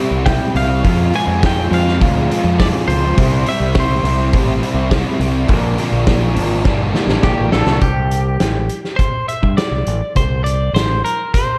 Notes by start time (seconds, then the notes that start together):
Already playing: C3 G3 C4 E4
0.11 C2
0.26 C3 G3 C4 E4 G5, kick, snare, open hi-hat
0.55 C2 C3 G3 C4 E4 F5, open hi-hat
0.84 F2 F3 G#3 C4 F4, kick, open hi-hat
1.14 F3 G#3 C4 F4 G#5, open hi-hat
1.27 F2
1.42 F3 G#3 C4 F4 G5, kick, snare, open hi-hat
1.71 F2 F3 G#3 C4 F4 F5, open hi-hat
1.88 snare
2.01 D2 F3 G#3 C4 F4, kick, open hi-hat
2.31 F3 G#3 C4 F4, open hi-hat
2.44 F2
2.60 F3 G#3 C4 F4 D5, kick, snare, open hi-hat
2.87 C#2 F3 G#3 C4 F4 C5, open hi-hat
3.17 C2 C3 G3 C4 E4, kick, open hi-hat
3.46 C3 G3 C4 E4 E5, open hi-hat
3.60 C2
3.75 C3 G3 C4 E4, kick, snare, open hi-hat
3.80 C5
4.03 C2 C3 G3 C4 E4, open hi-hat
4.33 A1 C3 G3 C4 E4, kick, open hi-hat
4.63 C3 G3 C4 E4, open hi-hat
4.74 C2
4.89 C3 G3 C4 E4, kick, snare, open hi-hat
5.19 C2 C3 G3 C4 E4, open hi-hat
5.48 A#1 A#2 D3 F3 A#3 D4, kick, open hi-hat
5.77 A#2 D3 F3 A#3 D4, open hi-hat
5.92 A#1
6.07 A#2 D3 F3 A#3 D4, kick, snare, open hi-hat
6.35 G#1 A#2 D3 F3 A#3 D4, open hi-hat
6.63 G1 G2 D3 G3 A#3 D4, kick, snare
6.93 G2 D3 G3 A#3 D4, snare
7.07 A1, snare
7.21 A#1 A#2 D3 F3 A#3 D4 G4, kick, snare
7.38 A1
7.52 A#1 A#2 D3 F3 A#3 D4 A4, snare
7.67 C2, snare
7.81 C2 G4, kick, closed hi-hat
8.11 closed hi-hat
8.40 A1, snare, closed hi-hat
8.69 closed hi-hat
8.84 snare
8.96 C5, kick, closed hi-hat
9.28 E5, closed hi-hat
9.43 G2, kick
9.57 D5, snare, closed hi-hat
9.71 C2
9.87 A1, closed hi-hat
10.15 C2 C5, kick, closed hi-hat
10.44 D5, closed hi-hat
10.73 A1 C5, snare, closed hi-hat
11.05 A#4, closed hi-hat
11.34 C5, kick, closed hi-hat